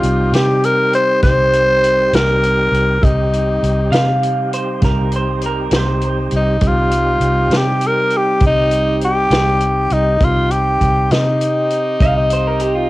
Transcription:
Already playing: G3 C4 D#4 F4 G4
0.03 C2, closed hi-hat
0.32 C3 G4, snare, closed hi-hat
0.64 A#4, closed hi-hat
0.93 C5, closed hi-hat
1.23 C2 C5, kick, snare, closed hi-hat
1.53 closed hi-hat
1.84 closed hi-hat
2.13 C2 A#4, snare, closed hi-hat
2.43 closed hi-hat
2.71 C2, closed hi-hat
3.01 C2 G3 C4 D#4 G4, kick, closed hi-hat
3.33 closed hi-hat
3.63 C2, closed hi-hat
3.91 C3 F5, snare, closed hi-hat
4.23 closed hi-hat
4.53 C5, closed hi-hat
4.82 C2 A#4, kick, snare, closed hi-hat
5.12 closed hi-hat
5.16 C5
5.41 closed hi-hat
5.46 A#4
5.71 C2, snare, closed hi-hat
5.76 C5
6.01 closed hi-hat
6.31 C2, closed hi-hat
6.36 D#4
6.61 C2 G3 C4 D#4 G4, kick, closed hi-hat
6.67 F4
6.91 closed hi-hat
7.20 C2, closed hi-hat
7.49 C3, snare, closed hi-hat
7.57 G4
7.81 closed hi-hat
7.87 A#4
8.10 closed hi-hat
8.17 G4
8.40 C2, kick, closed hi-hat
8.46 D#4
8.71 closed hi-hat
9.01 G4, closed hi-hat
9.30 C2, snare, closed hi-hat
9.61 closed hi-hat
9.90 C2 D#4, closed hi-hat
10.20 C2 C4 D#4 G4, kick, closed hi-hat
10.24 F4
10.51 G4, closed hi-hat
10.81 C2, kick, closed hi-hat
11.11 C3 D#4, snare, closed hi-hat
11.41 closed hi-hat
11.70 closed hi-hat
12.00 C2 F5, kick, closed hi-hat
12.18 D#5
12.30 C5, closed hi-hat
12.47 A#4
12.60 G4, closed hi-hat
12.75 F4

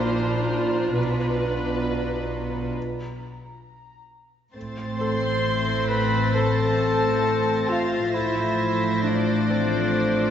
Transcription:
Already playing: A#1 A#2 D4 F4 C5 A#5 B5 F6
0.96 B1 B2 B4
1.06 F#6
4.55 A1 A2 A3 C4 C5 A6
4.99 A4 C5 C6
5.46 A#6
5.89 B4 B5
6.35 A4 A5
7.69 F4 F5
8.13 A1 A2 F3 A3 E4 C5 E5
9.03 D4 D5
9.50 C4 C5

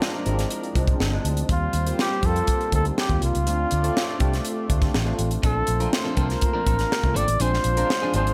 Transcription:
Already playing: F3 G#3 C4 D4 F4 A#4
0.02 snare
0.26 G#1 F3 G#3 C4 E4, closed hi-hat
0.33 F4
0.39 snare, closed hi-hat
0.50 closed hi-hat
0.64 closed hi-hat
0.75 C2 F3 G#3 C4 D4, kick, closed hi-hat
0.87 kick, closed hi-hat
1.00 G1, snare
1.12 F3 G#3 C4 D4
1.25 D2, closed hi-hat
1.37 closed hi-hat
1.49 D#2 G3 A#3 C4 F4 C5, kick, closed hi-hat
1.73 D#2, closed hi-hat
1.86 G3 A#3 C4 F4, closed hi-hat
1.99 G4, snare
2.23 F2 G3 A#3 C4 F4 A4, kick, closed hi-hat
2.36 closed hi-hat
2.47 kick, closed hi-hat
2.61 closed hi-hat
2.72 D2 G3 A#3 C4 D#4 A4, kick, closed hi-hat
2.85 closed hi-hat
2.98 G4, snare
3.09 D#2 G3 A#3 C4 F4, kick, closed hi-hat
3.22 C2 F4, closed hi-hat
3.35 C#2, closed hi-hat
3.46 D2 A3 C4 D4 F4 D5, closed hi-hat
3.71 D2, closed hi-hat
3.83 A3 C4 D4 F4, closed hi-hat
3.97 snare
4.20 C2 A3 C4 D4 G4, kick, closed hi-hat
4.33 snare, closed hi-hat
4.45 closed hi-hat
4.69 D2 A3 C4 D4 F4, kick, closed hi-hat
4.82 kick, snare, closed hi-hat
4.94 A1, snare
5.05 A3 C4 D4 F4
5.19 A1, closed hi-hat
5.31 closed hi-hat
5.43 A#1 F3 A3 A#3 C4 D4 F4 A4 C5, kick, closed hi-hat
5.56 muted clean electric guitar stroke
5.67 A#1, muted clean electric guitar stroke, closed hi-hat
5.79 F3 A3 C4 D4 F4 A#4, closed hi-hat
5.93 snare
6.04 F3 C4 D4 A4
6.16 C2 F3 A#3 C4 D4 F4 A4 A#4, kick, closed hi-hat
6.29 muted clean electric guitar stroke, snare, closed hi-hat
6.41 muted clean electric guitar stroke, kick, closed hi-hat
6.53 F3 C4 D4 A#4
6.66 A1 F3 A#3 C4 D4 F4 A4, kick, closed hi-hat
6.78 muted clean electric guitar stroke, snare, closed hi-hat
6.92 snare
7.03 C2 A3 C4 D4 F4, muted clean electric guitar stroke, kick, closed hi-hat
7.14 G#1 F3 C4 D4 A4 D5, closed hi-hat
7.28 A1, muted clean electric guitar stroke, closed hi-hat
7.39 A#1 F3 G#3 C4 D4 F4 G#4 C5 F5, closed hi-hat
7.52 muted clean electric guitar stroke, snare
7.64 A#1, muted clean electric guitar stroke, closed hi-hat
7.77 F3 G#3 C4 D4 F4 A#4, closed hi-hat
7.89 muted clean electric guitar stroke, snare
8.02 F3 C4 D4 G#4
8.14 G#1 F3 G#3 C4 D4 G#4 C5, closed hi-hat
8.27 muted clean electric guitar stroke, closed hi-hat

